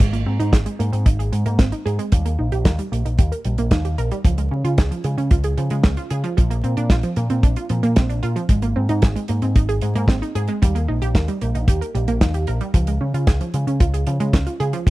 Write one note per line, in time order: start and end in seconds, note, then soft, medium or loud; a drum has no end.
0.00 0.23 G#1 loud
0.00 0.12 G#3 medium
0.00 kick loud
0.00 closed hi-hat loud
0.00 crash medium
0.13 0.21 A#3 medium
0.13 closed hi-hat soft
0.26 0.38 G#2 medium
0.26 0.39 C4 medium
0.40 0.51 G#2 loud
0.40 0.48 D#4 loud
0.40 closed hi-hat medium
0.53 0.64 G#1 loud
0.53 0.58 G#4 medium
0.53 kick loud
0.53 snare loud
0.53 closed hi-hat medium
0.66 0.74 G#3 medium
0.66 closed hi-hat medium
0.79 0.91 G#2 medium
0.79 0.88 A#3 medium
0.79 closed hi-hat medium
0.92 1.04 G#2 medium
0.92 1.05 C4 medium
0.92 closed hi-hat medium
1.06 1.29 G#1 medium
1.06 1.11 D#4 medium
1.06 kick loud
1.06 closed hi-hat medium
1.19 1.27 G#4 medium
1.19 closed hi-hat medium
1.32 1.44 G#2 medium
1.32 1.45 G#3 medium
1.32 closed hi-hat medium
1.46 1.58 G#2 medium
1.46 1.54 A#3 loud
1.46 closed hi-hat medium
1.59 1.71 G#1 medium
1.59 1.67 C4 medium
1.59 kick loud
1.59 snare loud
1.59 closed hi-hat loud
1.72 1.81 D#4 medium
1.72 closed hi-hat medium
1.86 1.97 G#2 medium
1.86 1.94 G#4 loud
1.86 closed hi-hat medium
1.99 2.04 G#3 loud
1.99 closed hi-hat medium
2.12 2.36 D#2 loud
2.12 2.24 G3 medium
2.12 kick loud
2.12 closed hi-hat medium
2.25 2.34 A#3 medium
2.25 closed hi-hat medium
2.39 2.50 A#1 medium
2.39 2.51 D#4 medium
2.52 2.64 A#1 loud
2.52 2.60 G4 medium
2.52 closed hi-hat soft
2.65 2.77 D#2 loud
2.65 2.70 A#4 medium
2.65 kick loud
2.65 snare loud
2.65 closed hi-hat medium
2.79 2.87 G3 medium
2.79 closed hi-hat medium
2.92 3.04 A#1 medium
2.92 3.00 A#3 medium
2.92 closed hi-hat medium
3.05 3.17 A#1 medium
3.05 3.17 D#4 medium
3.05 closed hi-hat medium
3.19 3.30 D#2 medium
3.19 3.23 G4 medium
3.19 kick loud
3.19 closed hi-hat medium
3.32 3.40 A#4 medium
3.32 closed hi-hat medium
3.45 3.57 A#1 medium
3.45 3.57 G3 medium
3.45 closed hi-hat medium
3.58 3.70 A#1 medium
3.58 3.66 A#3 loud
3.58 closed hi-hat medium
3.71 3.95 D#2 medium
3.71 3.80 D#4 medium
3.71 kick loud
3.71 snare loud
3.71 closed hi-hat loud
3.85 3.93 G4 medium
3.85 closed hi-hat medium
3.98 4.10 A#1 medium
3.98 4.06 A#4 loud
3.98 closed hi-hat medium
4.11 4.16 G3 loud
4.11 closed hi-hat medium
4.25 4.48 C#2 medium
4.25 4.37 F3 medium
4.25 kick loud
4.25 closed hi-hat loud
4.38 4.46 G#3 medium
4.38 closed hi-hat medium
4.51 4.63 C#3 medium
4.51 4.63 C#4 medium
4.64 4.76 C#3 loud
4.64 4.73 F4 loud
4.64 closed hi-hat medium
4.78 4.90 C#2 loud
4.78 4.83 G#4 medium
4.78 kick loud
4.78 snare loud
4.78 closed hi-hat medium
4.91 4.99 F3 medium
4.91 closed hi-hat medium
5.04 5.16 C#3 loud
5.04 5.12 G#3 medium
5.04 closed hi-hat medium
5.18 5.29 C#3 medium
5.18 5.30 C#4 medium
5.18 closed hi-hat soft
5.31 5.54 C#2 medium
5.31 5.36 F4 medium
5.31 kick loud
5.31 closed hi-hat medium
5.44 5.52 G#4 medium
5.44 closed hi-hat medium
5.57 5.69 C#3 medium
5.57 5.70 F3 medium
5.57 closed hi-hat medium
5.70 5.82 C#3 medium
5.70 5.79 G#3 loud
5.70 closed hi-hat medium
5.83 5.96 C#2 medium
5.83 5.92 C#4 medium
5.83 kick loud
5.83 snare loud
5.83 closed hi-hat loud
5.97 6.05 F4 medium
5.97 closed hi-hat soft
6.10 6.22 C#3 medium
6.10 6.19 G#4 loud
6.10 closed hi-hat medium
6.24 6.29 F3 loud
6.24 closed hi-hat medium
6.37 6.61 A#1 loud
6.37 6.49 F3 medium
6.37 kick loud
6.37 closed hi-hat medium
6.50 6.58 A#3 medium
6.50 closed hi-hat medium
6.64 6.75 A#2 medium
6.64 6.76 C4 medium
6.64 closed hi-hat medium
6.77 6.89 A#2 loud
6.77 6.85 D4 loud
6.77 closed hi-hat medium
6.90 7.02 A#1 loud
6.90 6.95 F4 medium
6.90 kick loud
6.90 snare loud
6.90 closed hi-hat medium
7.03 7.12 F3 medium
7.03 closed hi-hat soft
7.16 7.28 A#2 loud
7.16 7.25 A#3 medium
7.16 closed hi-hat medium
7.30 7.42 A#2 medium
7.30 7.42 C4 medium
7.30 closed hi-hat medium
7.43 7.55 A#1 medium
7.43 7.48 D4 medium
7.43 kick loud
7.43 closed hi-hat medium
7.56 7.65 F4 medium
7.56 closed hi-hat medium
7.69 7.82 A#2 medium
7.69 7.82 F3 medium
7.69 closed hi-hat medium
7.83 7.95 A#2 medium
7.83 7.91 A#3 loud
7.83 closed hi-hat soft
7.96 8.20 A#1 medium
7.96 8.04 C4 medium
7.96 kick loud
7.96 snare loud
7.96 closed hi-hat loud
8.09 8.18 D4 medium
8.09 closed hi-hat medium
8.23 8.35 A#2 medium
8.23 8.31 F4 loud
8.23 closed hi-hat medium
8.36 8.41 F3 loud
8.36 closed hi-hat medium
8.49 8.72 G#1 medium
8.49 8.62 G#3 medium
8.49 kick loud
8.49 closed hi-hat medium
8.62 8.71 A#3 medium
8.62 closed hi-hat medium
8.76 8.88 G#2 medium
8.76 8.88 C4 medium
8.89 9.01 G#2 loud
8.89 8.97 D#4 loud
8.89 closed hi-hat soft
9.02 9.14 G#1 loud
9.02 9.07 G#4 medium
9.02 kick loud
9.02 snare loud
9.02 closed hi-hat medium
9.16 9.24 G#3 medium
9.16 closed hi-hat medium
9.28 9.41 G#2 medium
9.28 9.37 A#3 medium
9.28 closed hi-hat medium
9.42 9.54 G#2 medium
9.42 9.54 C4 medium
9.42 closed hi-hat soft
9.56 9.79 G#1 medium
9.56 9.60 D#4 medium
9.56 kick loud
9.56 closed hi-hat medium
9.69 9.77 G#4 medium
9.69 closed hi-hat medium
9.81 9.94 G#2 medium
9.81 9.94 G#3 medium
9.81 closed hi-hat medium
9.95 10.07 G#2 loud
9.95 10.04 A#3 loud
9.95 closed hi-hat medium
10.08 10.20 G#1 medium
10.08 10.17 C4 medium
10.08 kick loud
10.08 snare loud
10.08 closed hi-hat medium
10.22 10.30 D#4 medium
10.22 closed hi-hat medium
10.35 10.47 G#2 medium
10.35 10.43 G#4 loud
10.35 closed hi-hat medium
10.48 10.53 G#3 loud
10.48 closed hi-hat medium
10.62 10.85 D#2 loud
10.62 10.74 G3 medium
10.62 kick loud
10.62 closed hi-hat loud
10.75 10.83 A#3 medium
10.75 closed hi-hat soft
10.88 11.00 A#1 medium
10.88 11.01 D#4 medium
11.02 11.13 A#1 loud
11.02 11.10 G4 loud
11.02 closed hi-hat medium
11.15 11.26 D#2 loud
11.15 11.20 A#4 medium
11.15 kick loud
11.15 snare loud
11.15 closed hi-hat medium
11.28 11.36 G3 medium
11.28 closed hi-hat medium
11.41 11.53 A#1 medium
11.41 11.50 A#3 medium
11.41 closed hi-hat medium
11.55 11.67 A#1 medium
11.55 11.67 D#4 medium
11.55 closed hi-hat medium
11.68 11.79 D#2 medium
11.68 11.73 G4 medium
11.68 kick loud
11.68 closed hi-hat loud
11.81 11.89 A#4 medium
11.81 closed hi-hat medium
11.95 12.06 A#1 medium
11.95 12.07 G3 medium
11.95 closed hi-hat medium
12.08 12.20 A#1 medium
12.08 12.16 A#3 loud
12.08 closed hi-hat medium
12.21 12.44 D#2 medium
12.21 12.29 D#4 medium
12.21 kick loud
12.21 snare loud
12.21 closed hi-hat loud
12.34 12.42 G4 medium
12.34 closed hi-hat medium
12.47 12.59 A#1 medium
12.47 12.56 A#4 loud
12.47 closed hi-hat medium
12.61 12.66 G3 loud
12.61 closed hi-hat soft
12.74 12.97 C#2 loud
12.74 12.86 F3 medium
12.74 kick loud
12.74 closed hi-hat medium
12.87 12.96 G#3 medium
12.87 closed hi-hat medium
13.01 13.12 C#3 medium
13.01 13.13 C#4 medium
13.14 13.26 C#3 loud
13.14 13.22 F4 medium
13.14 closed hi-hat soft
13.27 13.39 C#2 loud
13.27 13.32 G#4 medium
13.27 kick loud
13.27 snare loud
13.27 closed hi-hat medium
13.41 13.49 F3 medium
13.41 closed hi-hat soft
13.54 13.65 C#3 loud
13.54 13.62 G#3 medium
13.54 closed hi-hat medium
13.67 13.79 C#3 medium
13.67 13.79 C#4 medium
13.67 closed hi-hat medium
13.80 14.04 C#2 medium
13.80 13.85 F4 medium
13.80 kick loud
13.80 closed hi-hat loud
13.94 14.02 G#4 medium
13.94 closed hi-hat medium
14.07 14.19 C#3 medium
14.07 14.19 F3 medium
14.07 closed hi-hat medium
14.20 14.32 C#3 medium
14.20 14.28 G#3 loud
14.20 closed hi-hat medium
14.33 14.45 C#2 medium
14.33 14.42 C#4 medium
14.33 kick loud
14.33 snare loud
14.33 closed hi-hat loud
14.47 14.55 F4 medium
14.47 closed hi-hat medium
14.60 14.72 C#3 medium
14.60 14.68 G#4 loud
14.60 closed hi-hat medium
14.73 14.78 F3 loud
14.73 closed hi-hat medium
14.87 14.90 A#1 loud
14.87 14.90 F3 medium
14.87 kick loud